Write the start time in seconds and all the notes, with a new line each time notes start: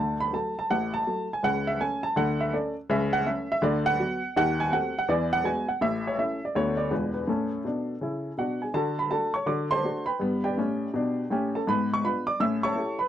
Already playing: D2 D3 A5
0.20 B5
0.33 F#3 A3 A4 A5
0.59 A5
0.70 A1 A2 F#5
0.94 A5
1.07 F#3 A3 A4
1.33 G#5
1.43 C#2 C#3 F#5
1.67 E5
1.80 A3 C#4 A4 G#5
2.03 A5
2.16 D2 D3 F#5
2.40 E5
2.53 A3 C#4 A4 D5
2.89 C#2 C#3 E5
3.13 F#5
3.26 A3 C#4 A4 E5
3.52 E5
3.62 D2 D3 D5
3.86 F#5
3.99 F#3 B3 F#4
4.36 D#2 D#3 F#5
4.60 G#5
4.72 A3 C4 F#4 F#5
4.99 F#5
5.08 E2 E3 D5
5.33 F#5
5.44 G#3 B3 F#4 G#5
5.68 F#5
5.81 A1 A2 E5
6.07 C#5
6.18 A3 C#4 E4 E5
6.45 D5
6.55 D2 D3 A3 B3 F#4 C#5
6.77 D5
6.91 E1 E2 G#3 D4 F4 B4
7.14 B4
7.28 A2 C#4 A4
7.65 B2 D4
8.01 C#3 E4
8.37 B2 D4 F#4 F#5
8.62 G#4 G#5
8.74 D3 F#4 A4 A5
8.99 B5
9.10 A3 D4 F#4 A4 A5
9.34 C#5 C#6
9.46 D3 F#4 D5 D6
9.71 C5 A5 C6
9.83 A3 D4 F#4
10.06 B4 G5 B5
10.20 G2 B3
10.44 G4 D5 G5
10.58 A2 C#4
10.94 B2 D4
11.30 A2 C#4 G4 G5
11.55 A4 A5
11.67 G#2 B3 B4 B5
11.94 C#6
12.04 B3 D4 F4 B4 B5
12.27 D5 D6
12.40 A2 C#4 E5 E6
12.63 C#5 A5 C#6
12.75 A3 E4 G4
12.99 B4 B5